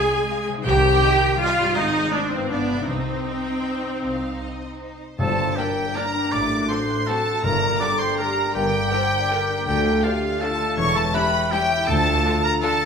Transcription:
Already playing: harp C3 C4 F4 C5, cello section G#3, viola section G#4, violin section G#5
0.30 violin section F5
0.48 harp C3
0.53 harp C4
0.57 harp D#4
0.62 timpani C3, harp C5
0.66 double bass section C2, cello section D#3, viola section G4, violin section G5
1.04 violin section D#5
1.40 cello section G3, viola section F4, violin section D#5 F5
1.59 harp G#2
1.63 harp C4
1.68 harp D#4
1.73 double bass section G#1, viola section D#4, harp C5
1.77 cello section G#3, violin section D#5
2.12 cello section C4, viola section D4, violin section C5 D5
2.31 harp G2, viola section C4, violin section C5
2.38 harp B3
2.42 harp F4
2.47 harp G4, violin section D5
2.51 double bass section G1, cello section B3, viola section D4, violin section F5
2.70 harp C3
2.74 harp C4
2.79 harp D#4
2.83 viola section C4, harp G4
2.87 double bass section C2, timpani C3, cello section D#4, violin section C5
3.26 violin section G5
4.04 double bass section C2, violin section F5
4.42 violin section D#5
4.82 violin section C5
5.19 double bass section G1, timpani G2, harp G2, cello section G2, oboe A4, french horn section C5, flute section A5, violin section A5
5.29 harp A#3
5.38 harp D4
5.48 harp G4
5.56 viola section A#3 D4, oboe G4, violin section G4 D5 G5, french horn section A#4, harp A#4, flute section G5
5.67 harp D5
5.77 harp G5
5.87 harp D5
5.94 viola section A#3 D4, french horn section D4, violin section G4 D5 A#5, oboe A#4, harp A#4, flute section A#5
6.06 harp G4
6.15 harp D4
6.24 harp A#3
6.31 double bass section A1, cello section A2, harp A2, oboe D5, violin section D6, flute section D6
6.42 harp A3
6.50 harp C4
6.60 harp F#4
6.68 viola section F#3 C4, violin section F#4 A4 C6, harp A4, oboe C5, flute section C6
6.79 harp C5
6.89 harp F#5
6.99 harp C5
7.07 viola section F#3 C4, violin section F#4 A4 A5, french horn section F#4, oboe A4, harp A4, flute section A5
7.17 harp F#4
7.26 harp C4
7.35 harp A3
7.43 double bass section G1, timpani G2, harp G2, cello section G2, french horn section A#4, oboe A#4, flute section A#5, violin section A#5
7.53 harp A#3
7.62 harp D4
7.71 harp G4
7.79 viola section D3 D4, violin section G4 A#4 D6, french horn section A4, harp A#4, oboe D5, flute section D6
7.90 harp D5
7.99 oboe C5, harp G5, violin section C6, flute section C6
8.09 harp D5
8.18 viola section D3 D4, violin section G4 A#4 A#5, french horn section G4, oboe A#4, harp A#4, flute section A#5
8.28 harp G4
8.37 harp D4
8.46 harp A#3
8.54 double bass section G1, harp G2, cello section G2, oboe G4, french horn section A#4, flute section G5, violin section G5
8.64 harp D3
8.73 harp D4
8.82 harp G4
8.91 viola section D3 D4, violin section G4 A#4, harp A#4, french horn section C5
9.01 harp D5
9.11 harp G5
9.21 harp D5
9.30 viola section D3 D4, violin section G4 A#4, harp A#4, french horn section A#4
9.40 harp G4
9.49 harp D4
9.58 harp A#3
9.66 double bass section D2, cello section D2, harp D3, oboe G4, french horn section A4, violin section G5, flute section G5
9.76 harp A3
9.84 harp F4
9.93 harp A4
10.03 viola section D3 D4, harp F4, oboe F4, french horn section G4, violin section A4 F5, flute section F5
10.13 harp F5
10.22 harp A5
10.32 harp F5
10.41 viola section D3 D4, french horn section F4, harp A4, oboe A4, violin section A4 A5, flute section A5
10.51 harp F4
10.59 harp A3
10.69 harp D4
10.77 double bass section E1, cello section E2, harp E3, french horn section E4, oboe C#5, flute section C#6, violin section C#6
10.86 harp E4
10.95 harp G4, oboe A4, flute section A5, violin section A5
11.04 harp C#5
11.13 viola section G3 C#4, violin section E4 G4 B5, french horn section G4, oboe B4, harp E5, flute section B5
11.23 harp G5
11.33 harp C#6
11.43 harp G5
11.52 viola section G3 C#4, french horn section E4, violin section E4 G4 G5, oboe G4, harp E5, flute section G5
11.61 harp C#5
11.71 harp G4
11.79 harp E4
11.87 double bass section D2, cello section D2, harp D3, french horn section F4, oboe A4, flute section A5, violin section A5
11.96 harp D4
12.05 harp F4
12.24 viola section D3 D4, violin section F4 A4, harp D5
12.34 harp F5
12.43 oboe A#4, harp A5, flute section A#5, violin section A#5
12.53 harp F5
12.62 viola section D3 D4, violin section F4 A4 A5, oboe A4, harp D5, flute section A5
12.72 harp A4
12.81 harp F4

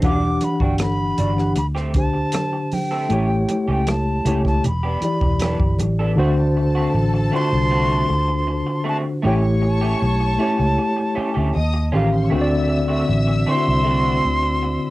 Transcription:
0.01 fingered electric bass E1, tine electric piano E3 D4 F#4 F#5, clean electric guitar G3 D4, kick, closed hi-hat
0.05 clean electric guitar F#4, flute D6
0.10 tine electric piano G4
0.22 muted clean electric guitar stroke
0.41 flute B5, muted clean electric guitar stroke, closed hi-hat, muted conga
0.60 fingered electric bass G1, clean electric guitar G3 D4 F#4, flute G5, kick
0.78 flute B5, muted clean electric guitar stroke, cross-stick, closed hi-hat, high conga
1.18 fingered electric bass G1, clean electric guitar G3 D4 F#4, closed hi-hat, muted conga, low conga
1.36 tine electric piano E3 D4 G4 F#5, muted clean electric guitar stroke, cross-stick
1.56 fingered electric bass D2, flute B5, muted clean electric guitar stroke, closed hi-hat
1.75 clean electric guitar A3 C4 G4, cross-stick
1.94 tine electric piano D3 D4 G4, flute A5, muted clean electric guitar stroke, kick, closed hi-hat, muted conga
1.98 tine electric piano C5
2.14 muted clean electric guitar stroke
2.32 muted clean electric guitar stroke, cross-stick, closed hi-hat, high conga
2.53 muted clean electric guitar stroke
2.72 flute G5, open hi-hat, high conga
2.91 clean electric guitar A3 C4 A4
3.09 fingered electric bass A1, tine electric piano A3 E4 G4 C#5, clean electric guitar A3 C#4 G4, closed hi-hat
3.29 muted clean electric guitar stroke
3.49 muted clean electric guitar stroke, closed hi-hat, muted conga
3.68 fingered electric bass C#2, clean electric guitar A3 C#4 G4, flute G5
3.87 flute A5, muted clean electric guitar stroke, cross-stick, closed hi-hat, high conga
4.24 fingered electric bass C#2, tine electric piano A3 E4 G4 C#5, clean electric guitar A3 C#4 G4, closed hi-hat, muted conga, low conga
4.44 flute A5, muted clean electric guitar stroke, kick, cross-stick
4.64 fingered electric bass E1, flute B5, muted clean electric guitar stroke, closed hi-hat, low conga
4.83 clean electric guitar B3 D4 G4
5.01 tine electric piano E3 E4 G4 D5, muted clean electric guitar stroke, closed hi-hat, muted conga
5.21 fingered electric bass E1, muted clean electric guitar stroke, kick
5.40 clean electric guitar B3 D4 G4, cross-stick, closed hi-hat, high conga
5.58 fingered electric bass G1, kick, high conga
5.79 fingered electric bass A1, muted clean electric guitar stroke, closed hi-hat, high conga
5.99 clean electric guitar B3 D4 A4
6.16 fingered electric bass D2, tine electric piano D3 D4 F#4 C5, clean electric guitar A3 C4 F#4, string section A4 A5
6.37 muted clean electric guitar stroke
6.57 muted clean electric guitar stroke
6.75 clean electric guitar A3 C4 F#4
6.94 fingered electric bass A1, muted clean electric guitar stroke
7.14 muted clean electric guitar stroke
7.32 tine electric piano D3 D4 F4 C5, clean electric guitar A3 C4 F#4, flute C6
7.41 tine electric piano F#4
7.53 fingered electric bass C2, muted clean electric guitar stroke
7.71 clean electric guitar A3 C4 F#4
8.09 fingered electric bass D2, muted clean electric guitar stroke
8.28 muted clean electric guitar stroke
8.47 muted clean electric guitar stroke
8.67 muted clean electric guitar stroke
8.84 clean electric guitar A3 C4 F#4
8.88 flute A5
9.03 muted clean electric guitar stroke
9.22 fingered electric bass A1, clean electric guitar A3 C#4 G4, tine electric piano A3 E4 G4, string section C#5 C#6, flute G5
9.27 tine electric piano C#5
9.42 muted clean electric guitar stroke
9.62 muted clean electric guitar stroke
9.66 flute A5
9.81 clean electric guitar A3 C#4 G4
10.01 fingered electric bass B1, muted clean electric guitar stroke
10.20 muted clean electric guitar stroke
10.38 tine electric piano A3 E4 G4, clean electric guitar A3 C#4 G4
10.42 tine electric piano C#5
10.58 fingered electric bass C#2, muted clean electric guitar stroke
10.78 muted clean electric guitar stroke
10.97 muted clean electric guitar stroke
11.15 clean electric guitar A3 C#4 G4, muted fingered electric bass stroke
11.34 fingered electric bass D2, clean electric guitar A3 C#4 G4
11.54 fingered electric bass D#2, string section D#5 D#6, muted clean electric guitar stroke
11.74 muted clean electric guitar stroke
11.92 fingered electric bass A1, tine electric piano D#3 C#4 G4, clean electric guitar C#4 F4 G4, string section A4 A5
11.97 tine electric piano F5
12.04 string section A#4 A#5
12.11 string section C5 C6, muted clean electric guitar stroke
12.23 string section C#5 C#6
12.30 fingered electric bass D2, tine electric piano D3 C4 F#4, clean electric guitar A3 C4 F#4, string section E5 E6
12.35 tine electric piano C5
12.41 tine electric piano D5
12.49 muted clean electric guitar stroke
12.68 muted clean electric guitar stroke
12.88 clean electric guitar A3 C4 F#4
13.08 fingered electric bass A1, muted clean electric guitar stroke
13.27 muted clean electric guitar stroke
13.46 tine electric piano D3 C4 E4, clean electric guitar A3 C4 F#4, flute C6
13.51 tine electric piano C5
13.57 tine electric piano F#4
13.66 fingered electric bass C2, muted clean electric guitar stroke
13.85 clean electric guitar A3 C4 F#4
14.24 fingered electric bass D2, muted clean electric guitar stroke
14.43 muted clean electric guitar stroke
14.63 muted clean electric guitar stroke

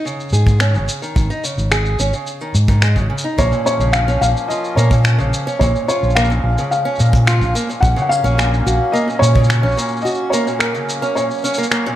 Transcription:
0.05 steel-string acoustic guitar C#3, shaker
0.20 shaker
0.29 fingered electric bass G#2, steel-string acoustic guitar G#4, shaker
0.33 shaker
0.47 kick, shaker
0.60 steel-string acoustic guitar C#4, finger snap, shaker
0.74 fingered electric bass G#1, steel-string acoustic guitar C#3, shaker
0.89 shaker
1.02 steel-string acoustic guitar D#3, shaker
1.16 fingered electric bass G#1, kick, shaker
1.30 steel-string acoustic guitar D#4, shaker
1.44 steel-string acoustic guitar C#3, shaker
1.58 fingered electric bass G#1, shaker
1.71 steel-string acoustic guitar G#4, finger snap, shaker
1.86 shaker
1.99 fingered electric bass G#1, steel-string acoustic guitar C#4, shaker
2.13 steel-string acoustic guitar C#3, shaker
2.27 shaker
2.41 steel-string acoustic guitar D#3, shaker
2.54 fingered electric bass G#2, shaker
2.68 steel-string acoustic guitar D#3, kick, shaker
2.82 steel-string acoustic guitar G#3, finger snap, shaker
2.96 fingered electric bass G#1, steel-string acoustic guitar C#3, kick, shaker
3.10 steel-string acoustic guitar C#3
3.18 shaker
3.24 steel-string acoustic guitar D#4
3.38 fingered electric bass A#1, accordion F3 A#3 C#4, steel-string acoustic guitar A#3, felt piano C#5, kick, shaker
3.52 steel-string acoustic guitar A#2, shaker
3.66 felt piano C#5, shaker
3.79 fingered electric bass A#1, steel-string acoustic guitar C#3, shaker
3.93 felt piano F5, finger snap, shaker
4.08 steel-string acoustic guitar C#4, shaker
4.21 fingered electric bass A#1, steel-string acoustic guitar A#2, felt piano F5, shaker
4.37 shaker
4.48 steel-string acoustic guitar F4, felt piano D#5, shaker
4.64 shaker
4.76 fingered electric bass A#2, steel-string acoustic guitar A#3, felt piano C#5, shaker
4.91 steel-string acoustic guitar A#2, kick, shaker
5.05 finger snap, shaker
5.19 fingered electric bass A#1, steel-string acoustic guitar C#3, shaker
5.34 shaker
5.47 steel-string acoustic guitar C#4, shaker
5.59 fingered electric bass A#1, steel-string acoustic guitar A#2, accordion G#3, felt piano C#5, kick, shaker
5.76 shaker
5.88 steel-string acoustic guitar F4, felt piano C#5, shaker
6.03 fingered electric bass A#1, shaker
6.10 shaker
6.15 steel-string acoustic guitar A#3, felt piano F5, finger snap, shaker
6.25 shaker
6.30 steel-string acoustic guitar A#2, shaker
6.44 fingered electric bass A#1
6.58 steel-string acoustic guitar C#3, shaker
6.71 felt piano F5, shaker
6.85 steel-string acoustic guitar C#4, shaker
6.95 shaker
6.99 steel-string acoustic guitar A#2, fingered electric bass A#2, shaker
7.13 kick, shaker
7.27 steel-string acoustic guitar F4, finger snap, shaker
7.41 fingered electric bass A#1, kick, shaker
7.55 steel-string acoustic guitar A#3, shaker
7.69 steel-string acoustic guitar A#2, shaker
7.80 fingered electric bass A#1, accordion F#3 A#3, felt piano F#5, kick, shaker
7.96 steel-string acoustic guitar C#3, shaker
8.02 felt piano F#5
8.09 felt piano F5, shaker
8.24 fingered electric bass A#1, steel-string acoustic guitar C#4, shaker
8.38 steel-string acoustic guitar A#2, finger snap, shaker
8.54 shaker
8.66 fingered electric bass A#1, steel-string acoustic guitar F#4, shaker
8.92 steel-string acoustic guitar A#3, felt piano D#5, shaker
9.08 steel-string acoustic guitar A#2, shaker
9.19 fingered electric bass A#2, felt piano C#5, shaker
9.35 steel-string acoustic guitar C#3, kick
9.44 shaker
9.50 finger snap, shaker
9.63 fingered electric bass A#1, steel-string acoustic guitar C#4, shaker
9.69 shaker
9.71 shaker
9.75 steel-string acoustic guitar A#2, shaker
9.78 shaker
9.82 shaker
9.88 shaker
9.92 shaker
9.97 shaker
10.01 steel-string acoustic guitar F#4, felt piano D#5, shaker
10.06 shaker
10.10 shaker
10.15 shaker
10.30 steel-string acoustic guitar A#3, felt piano C#5, shaker
10.47 steel-string acoustic guitar A#2, shaker
10.59 felt piano A#4, finger snap, shaker
10.75 steel-string acoustic guitar C#3, shaker
10.89 shaker
11.02 steel-string acoustic guitar C#4, shaker
11.15 steel-string acoustic guitar A#2, felt piano C#5, shaker
11.31 shaker
11.34 shaker
11.38 shaker
11.42 steel-string acoustic guitar C#4, shaker
11.45 shaker
11.48 shaker
11.51 shaker
11.54 shaker
11.58 steel-string acoustic guitar A#3, shaker
11.63 shaker
11.71 steel-string acoustic guitar A#3, finger snap, shaker
11.86 steel-string acoustic guitar A#2, shaker

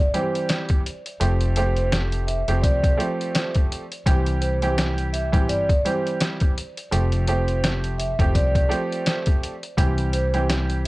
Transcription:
0.14 upright piano E3 G3 C4 G4, vibraphone C5, closed hi-hat
0.35 closed hi-hat
0.49 snare, closed hi-hat
0.69 kick, closed hi-hat
0.86 closed hi-hat
1.06 closed hi-hat
1.20 upright bass F1, upright piano F3 A3 C4 G4, closed hi-hat
1.41 closed hi-hat
1.56 upright piano F3 A3 C4 G4, vibraphone C5, closed hi-hat
1.77 closed hi-hat
1.92 snare, closed hi-hat
2.12 closed hi-hat
2.27 vibraphone E5, closed hi-hat
2.48 upright bass F1, upright piano F3 A3 C4 G4, closed hi-hat
2.62 upright bass C2, vibraphone D5, kick, closed hi-hat
2.84 kick, closed hi-hat
2.97 upright piano F3 A3 C4 G4, vibraphone C5, closed hi-hat
3.21 closed hi-hat
3.35 snare, closed hi-hat
3.55 kick, closed hi-hat
3.72 closed hi-hat
3.92 closed hi-hat
4.06 upright bass C2, upright piano E3 G3 C4 G4, kick, closed hi-hat
4.26 closed hi-hat
4.41 vibraphone C5, closed hi-hat
4.62 upright piano E3 G3 C4 G4, closed hi-hat
4.78 snare, closed hi-hat
4.98 closed hi-hat
5.13 vibraphone E5, closed hi-hat
5.32 upright bass A1, upright piano E3 G3 C4 G4, kick, closed hi-hat
5.49 upright bass G1, vibraphone D5, closed hi-hat
5.69 kick, closed hi-hat
5.84 upright piano E3 G3 C4 G4, vibraphone C5, closed hi-hat
6.07 closed hi-hat
6.20 snare, closed hi-hat
6.40 kick, closed hi-hat
6.58 closed hi-hat
6.77 closed hi-hat
6.91 upright bass F1, upright piano F3 A3 C4 G4, closed hi-hat
7.12 closed hi-hat
7.27 upright piano F3 A3 C4 G4, vibraphone C5, closed hi-hat
7.48 closed hi-hat
7.64 snare, closed hi-hat
7.84 closed hi-hat
7.98 vibraphone E5, closed hi-hat
8.19 upright bass F1, upright piano F3 A3 C4 G4, kick, closed hi-hat
8.34 upright bass C2, vibraphone D5, kick, closed hi-hat
8.55 kick, closed hi-hat
8.69 upright piano F3 A3 C4 G4, vibraphone C5, closed hi-hat
8.92 closed hi-hat
9.06 snare, closed hi-hat
9.26 kick, closed hi-hat
9.44 closed hi-hat
9.63 closed hi-hat
9.77 upright bass C2, upright piano E3 G3 C4 G4, kick, closed hi-hat
9.98 closed hi-hat
10.13 vibraphone C5, closed hi-hat
10.34 upright piano E3 G3 C4 G4, closed hi-hat
10.49 snare, closed hi-hat
10.70 closed hi-hat

